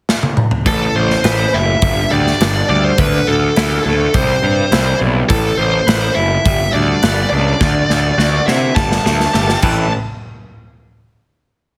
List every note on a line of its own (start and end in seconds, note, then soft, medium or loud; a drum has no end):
0.09 snare medium
0.23 high tom medium
0.37 mid tom medium
0.51 floor tom medium
0.66 0.87 A1 medium
0.66 1.81 A2 medium
0.66 0.94 A4 medium
0.66 kick loud
0.66 open hi-hat soft
0.95 1.16 A1 medium
0.95 1.55 C5 medium
1.10 snare soft
1.24 1.45 A1 medium
1.24 1.82 B4 medium
1.24 snare loud
1.24 open hi-hat soft
1.53 1.74 F#1 medium
1.53 1.82 E4 medium
1.53 2.08 E5 medium
1.82 2.03 G1 medium
1.82 2.98 G2 medium
1.82 kick loud
1.82 open hi-hat soft
2.11 2.32 D2 medium
2.11 2.68 G3 medium
2.11 2.68 D5 medium
2.27 snare soft
2.40 2.61 G1 medium
2.40 2.99 D4 medium
2.40 snare loud
2.40 open hi-hat soft
2.69 2.90 D2 medium
2.69 2.98 G3 medium
2.69 2.84 D5 medium
2.84 2.99 C5 medium
2.98 3.19 D2 medium
2.98 4.14 D3 medium
2.98 3.28 B4 medium
2.98 kick loud
2.98 open hi-hat soft
3.27 3.48 D2 medium
3.27 3.81 A4 medium
3.56 3.77 D2 medium
3.56 4.14 E4 medium
3.56 snare medium
3.56 open hi-hat soft
3.85 4.06 D2 medium
3.85 4.14 A3 medium
3.85 4.12 A4 medium
4.14 4.35 C2 medium
4.14 5.30 C3 medium
4.14 4.97 C5 medium
4.14 kick medium
4.14 open hi-hat soft
4.43 4.64 G2 medium
4.43 4.99 G3 medium
4.72 4.92 C2 medium
4.72 5.30 E4 medium
4.72 snare medium
4.72 open hi-hat soft
5.00 5.22 B1 medium
5.00 5.29 G3 medium
5.29 5.50 A1 medium
5.29 6.45 A2 medium
5.29 5.56 A4 medium
5.29 kick loud
5.29 open hi-hat soft
5.57 5.79 A1 medium
5.57 6.12 C5 medium
5.87 6.08 A1 medium
5.87 6.45 B4 medium
5.87 snare loud
5.87 open hi-hat soft
6.15 6.37 F#1 medium
6.15 6.45 E4 medium
6.15 6.70 E5 medium
6.45 6.66 G1 medium
6.45 7.61 G3 medium
6.45 kick loud
6.45 open hi-hat soft
6.73 6.94 D2 medium
6.73 7.30 D4 medium
6.73 7.27 D5 medium
7.03 7.24 G1 medium
7.03 7.61 B4 medium
7.03 snare loud
7.03 open hi-hat soft
7.30 7.52 C#2 medium
7.30 7.61 D4 medium
7.30 8.50 D5 medium
7.60 7.81 D2 medium
7.60 8.76 D3 medium
7.60 kick loud
7.60 snare medium
7.89 8.10 D2 medium
7.89 snare medium
8.18 8.39 D2 medium
8.18 8.76 F#4 medium
8.18 snare medium
8.46 8.68 C3 medium
8.46 8.76 E4 medium
8.46 8.74 E5 medium
8.46 snare medium
8.75 8.97 G1 medium
8.75 9.62 G3 medium
8.75 9.58 A5 medium
8.75 kick loud
8.75 snare medium
8.92 snare medium
9.04 9.26 D2 medium
9.04 9.62 A3 medium
9.04 snare medium
9.20 snare medium
9.33 9.55 G1 medium
9.33 9.63 G4 medium
9.33 snare medium
9.49 snare medium
9.62 9.90 A1 medium
9.62 9.86 A2 medium
9.62 9.86 E3 medium
9.62 9.86 A3 medium
9.62 9.87 C4 medium
9.62 9.86 E4 medium
9.62 9.87 B4 medium
9.62 9.90 A5 medium
9.62 kick loud
9.62 crash medium